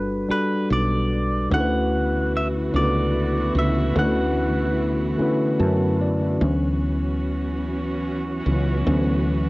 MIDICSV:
0, 0, Header, 1, 6, 480
1, 0, Start_track
1, 0, Tempo, 816327
1, 886, Time_signature, 6, 3, 24, 8
1, 5582, End_track
2, 0, Start_track
2, 0, Title_t, "Clean electric guitar"
2, 0, Program_c, 0, 27
2, 0, Note_on_c, 0, 71, 72
2, 177, Note_off_c, 0, 71, 0
2, 184, Note_on_c, 0, 71, 85
2, 422, Note_off_c, 0, 71, 0
2, 426, Note_on_c, 0, 74, 91
2, 872, Note_off_c, 0, 74, 0
2, 905, Note_on_c, 0, 78, 88
2, 1389, Note_off_c, 0, 78, 0
2, 1392, Note_on_c, 0, 76, 85
2, 1454, Note_off_c, 0, 76, 0
2, 1623, Note_on_c, 0, 74, 86
2, 2071, Note_off_c, 0, 74, 0
2, 2109, Note_on_c, 0, 76, 84
2, 2342, Note_off_c, 0, 76, 0
2, 2344, Note_on_c, 0, 78, 76
2, 3271, Note_off_c, 0, 78, 0
2, 5582, End_track
3, 0, Start_track
3, 0, Title_t, "Tine electric piano"
3, 0, Program_c, 1, 4
3, 0, Control_c, 1, 64, 127
3, 0, Note_on_c, 1, 55, 75
3, 0, Note_on_c, 1, 62, 64
3, 0, Note_on_c, 1, 66, 68
3, 0, Note_on_c, 1, 69, 62
3, 0, Note_on_c, 1, 71, 78
3, 166, Note_off_c, 1, 55, 0
3, 166, Note_on_c, 1, 55, 61
3, 169, Note_off_c, 1, 62, 0
3, 169, Note_on_c, 1, 62, 53
3, 176, Note_off_c, 1, 66, 0
3, 176, Note_on_c, 1, 66, 52
3, 184, Note_off_c, 1, 69, 0
3, 184, Note_on_c, 1, 69, 54
3, 190, Note_on_c, 1, 74, 65
3, 709, Note_off_c, 1, 55, 0
3, 711, Note_off_c, 1, 62, 0
3, 714, Note_off_c, 1, 66, 0
3, 718, Note_off_c, 1, 69, 0
3, 721, Note_off_c, 1, 74, 0
3, 879, Note_on_c, 1, 50, 74
3, 885, Note_on_c, 1, 57, 69
3, 890, Note_on_c, 1, 61, 68
3, 893, Note_off_c, 1, 71, 0
3, 893, Control_c, 1, 64, 0
3, 893, Note_on_c, 1, 64, 67
3, 902, Note_on_c, 1, 66, 69
3, 905, Note_on_c, 1, 69, 65
3, 934, Note_off_c, 1, 69, 0
3, 943, Note_on_c, 1, 71, 84
3, 1004, Control_c, 1, 64, 127
3, 1425, Note_off_c, 1, 50, 0
3, 1428, Note_off_c, 1, 57, 0
3, 1431, Note_off_c, 1, 61, 0
3, 1432, Note_off_c, 1, 64, 0
3, 1437, Note_off_c, 1, 66, 0
3, 1458, Note_off_c, 1, 71, 0
3, 1605, Note_on_c, 1, 62, 61
3, 1611, Note_on_c, 1, 57, 53
3, 1614, Note_on_c, 1, 59, 55
3, 1619, Note_on_c, 1, 64, 54
3, 1626, Note_on_c, 1, 66, 56
3, 1631, Note_on_c, 1, 69, 57
3, 1656, Note_off_c, 1, 69, 0
3, 1668, Note_on_c, 1, 71, 67
3, 2149, Note_off_c, 1, 62, 0
3, 2152, Note_off_c, 1, 57, 0
3, 2153, Note_off_c, 1, 59, 0
3, 2156, Note_off_c, 1, 64, 0
3, 2159, Note_off_c, 1, 66, 0
3, 2180, Note_off_c, 1, 71, 0
3, 2326, Note_on_c, 1, 50, 76
3, 2329, Note_on_c, 1, 57, 73
3, 2335, Note_on_c, 1, 61, 70
3, 2340, Note_on_c, 1, 64, 72
3, 2346, Note_on_c, 1, 66, 70
3, 2348, Note_on_c, 1, 71, 83
3, 2869, Note_off_c, 1, 50, 0
3, 2870, Note_off_c, 1, 57, 0
3, 2874, Note_off_c, 1, 61, 0
3, 2876, Note_off_c, 1, 64, 0
3, 2879, Note_off_c, 1, 66, 0
3, 2880, Note_off_c, 1, 71, 0
3, 3042, Note_on_c, 1, 50, 73
3, 3050, Note_on_c, 1, 57, 68
3, 3052, Note_on_c, 1, 61, 68
3, 3057, Note_on_c, 1, 64, 67
3, 3063, Note_on_c, 1, 66, 68
3, 3068, Note_on_c, 1, 71, 81
3, 3295, Note_on_c, 1, 81, 70
3, 3514, Note_off_c, 1, 81, 0
3, 3536, Note_on_c, 1, 74, 65
3, 3587, Note_off_c, 1, 50, 0
3, 3591, Note_off_c, 1, 57, 0
3, 3592, Note_off_c, 1, 61, 0
3, 3594, Note_off_c, 1, 64, 0
3, 3597, Note_off_c, 1, 66, 0
3, 3600, Note_off_c, 1, 71, 0
3, 3754, Note_off_c, 1, 74, 0
3, 3768, Note_on_c, 1, 52, 54
3, 3771, Note_on_c, 1, 54, 50
3, 3774, Control_c, 1, 64, 0
3, 3775, Note_on_c, 1, 59, 49
3, 3776, Note_on_c, 1, 61, 59
3, 3876, Control_c, 1, 64, 127
3, 4463, Note_off_c, 1, 52, 0
3, 4465, Note_off_c, 1, 54, 0
3, 4467, Note_off_c, 1, 59, 0
3, 4467, Note_off_c, 1, 61, 0
3, 4971, Note_on_c, 1, 52, 46
3, 4974, Note_on_c, 1, 54, 40
3, 4975, Note_on_c, 1, 59, 42
3, 4979, Note_on_c, 1, 61, 53
3, 5185, Note_off_c, 1, 52, 0
3, 5186, Note_off_c, 1, 54, 0
3, 5187, Note_off_c, 1, 59, 0
3, 5189, Note_off_c, 1, 61, 0
3, 5212, Note_on_c, 1, 52, 55
3, 5217, Note_on_c, 1, 54, 53
3, 5217, Note_on_c, 1, 59, 53
3, 5219, Note_on_c, 1, 61, 61
3, 5528, Note_off_c, 1, 52, 0
3, 5531, Note_off_c, 1, 54, 0
3, 5531, Note_off_c, 1, 59, 0
3, 5532, Note_off_c, 1, 61, 0
3, 5582, End_track
4, 0, Start_track
4, 0, Title_t, "String section"
4, 0, Program_c, 2, 48
4, 886, Note_on_c, 2, 52, 70
4, 889, Note_on_c, 2, 59, 61
4, 889, Note_on_c, 2, 64, 65
4, 892, Note_on_c, 2, 66, 75
4, 3742, Note_off_c, 2, 52, 0
4, 3743, Note_off_c, 2, 64, 0
4, 3744, Note_off_c, 2, 59, 0
4, 3745, Note_off_c, 2, 66, 0
4, 3763, Note_on_c, 2, 66, 72
4, 3764, Note_on_c, 2, 59, 65
4, 3765, Note_on_c, 2, 52, 67
4, 3765, Note_on_c, 2, 61, 66
4, 5582, Note_off_c, 2, 52, 0
4, 5582, Note_off_c, 2, 59, 0
4, 5582, Note_off_c, 2, 61, 0
4, 5582, Note_off_c, 2, 66, 0
4, 5582, End_track
5, 0, Start_track
5, 0, Title_t, "Fretless electric bass"
5, 0, Program_c, 3, 35
5, 0, Note_on_c, 3, 31, 86
5, 147, Note_off_c, 3, 31, 0
5, 413, Note_on_c, 3, 35, 87
5, 866, Note_off_c, 3, 35, 0
5, 890, Note_on_c, 3, 38, 107
5, 1584, Note_off_c, 3, 38, 0
5, 1610, Note_on_c, 3, 37, 74
5, 2064, Note_off_c, 3, 37, 0
5, 2086, Note_on_c, 3, 37, 86
5, 2302, Note_off_c, 3, 37, 0
5, 2326, Note_on_c, 3, 38, 106
5, 3022, Note_off_c, 3, 38, 0
5, 3290, Note_on_c, 3, 42, 91
5, 3744, Note_off_c, 3, 42, 0
5, 3770, Note_on_c, 3, 38, 111
5, 4944, Note_off_c, 3, 38, 0
5, 4973, Note_on_c, 3, 37, 86
5, 5186, Note_off_c, 3, 37, 0
5, 5212, Note_on_c, 3, 38, 113
5, 5582, Note_off_c, 3, 38, 0
5, 5582, End_track
6, 0, Start_track
6, 0, Title_t, "Muted fretless electric bass strokes"
6, 172, Note_on_c, 9, 29, 41
6, 231, Note_off_c, 9, 29, 0
6, 3052, Note_on_c, 9, 29, 43
6, 3111, Note_off_c, 9, 29, 0
6, 5582, End_track
0, 0, End_of_file